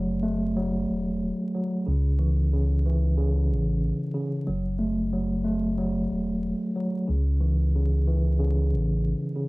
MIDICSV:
0, 0, Header, 1, 3, 480
1, 0, Start_track
1, 0, Key_signature, 3, "minor"
1, 0, Tempo, 652174
1, 1373, Time_signature, 4, 2, 24, 8
1, 6980, End_track
2, 0, Start_track
2, 0, Title_t, "Tine electric piano"
2, 0, Program_c, 0, 4
2, 0, Control_c, 0, 64, 127
2, 0, Note_on_c, 0, 54, 86
2, 0, Note_on_c, 0, 57, 80
2, 158, Note_off_c, 0, 57, 0
2, 167, Note_on_c, 0, 57, 84
2, 405, Note_off_c, 0, 54, 0
2, 414, Note_on_c, 0, 54, 90
2, 1128, Note_off_c, 0, 54, 0
2, 1130, Note_off_c, 0, 57, 0
2, 1137, Note_on_c, 0, 54, 80
2, 1369, Note_on_c, 0, 49, 94
2, 1375, Note_off_c, 0, 54, 0
2, 1383, Control_c, 0, 64, 0
2, 1509, Control_c, 0, 64, 127
2, 1610, Note_on_c, 0, 52, 83
2, 1857, Note_off_c, 0, 49, 0
2, 1866, Note_on_c, 0, 49, 85
2, 2093, Note_off_c, 0, 52, 0
2, 2102, Note_on_c, 0, 52, 88
2, 2327, Note_off_c, 0, 49, 0
2, 2335, Note_on_c, 0, 49, 95
2, 3038, Note_off_c, 0, 49, 0
2, 3047, Note_on_c, 0, 49, 83
2, 3058, Note_off_c, 0, 52, 0
2, 3290, Note_off_c, 0, 49, 0
2, 3290, Note_on_c, 0, 54, 95
2, 3304, Control_c, 0, 64, 0
2, 3434, Control_c, 0, 64, 127
2, 3525, Note_on_c, 0, 57, 81
2, 3768, Note_off_c, 0, 54, 0
2, 3777, Note_on_c, 0, 54, 91
2, 3999, Note_off_c, 0, 57, 0
2, 4008, Note_on_c, 0, 57, 84
2, 4245, Note_off_c, 0, 54, 0
2, 4254, Note_on_c, 0, 54, 90
2, 4966, Note_off_c, 0, 54, 0
2, 4971, Note_off_c, 0, 57, 0
2, 4975, Note_on_c, 0, 54, 84
2, 5208, Note_on_c, 0, 49, 92
2, 5214, Note_off_c, 0, 54, 0
2, 5224, Control_c, 0, 64, 0
2, 5372, Control_c, 0, 64, 127
2, 5451, Note_on_c, 0, 52, 80
2, 5698, Note_off_c, 0, 49, 0
2, 5707, Note_on_c, 0, 49, 82
2, 5935, Note_off_c, 0, 52, 0
2, 5944, Note_on_c, 0, 52, 86
2, 6167, Note_off_c, 0, 49, 0
2, 6176, Note_on_c, 0, 49, 93
2, 6879, Note_off_c, 0, 49, 0
2, 6888, Note_on_c, 0, 49, 82
2, 6899, Note_off_c, 0, 52, 0
2, 6980, Note_off_c, 0, 49, 0
2, 6980, End_track
3, 0, Start_track
3, 0, Title_t, "Sub bass"
3, 0, Program_c, 1, 38
3, 0, Note_on_c, 1, 30, 100
3, 627, Note_off_c, 1, 30, 0
3, 659, Note_on_c, 1, 28, 97
3, 964, Note_off_c, 1, 28, 0
3, 1379, Note_on_c, 1, 37, 112
3, 2580, Note_on_c, 1, 33, 107
3, 2591, Note_off_c, 1, 37, 0
3, 2885, Note_off_c, 1, 33, 0
3, 3299, Note_on_c, 1, 30, 103
3, 4467, Note_off_c, 1, 30, 0
3, 4499, Note_on_c, 1, 28, 97
3, 4805, Note_off_c, 1, 28, 0
3, 5219, Note_on_c, 1, 37, 111
3, 6418, Note_on_c, 1, 33, 105
3, 6429, Note_off_c, 1, 37, 0
3, 6724, Note_off_c, 1, 33, 0
3, 6980, End_track
0, 0, End_of_file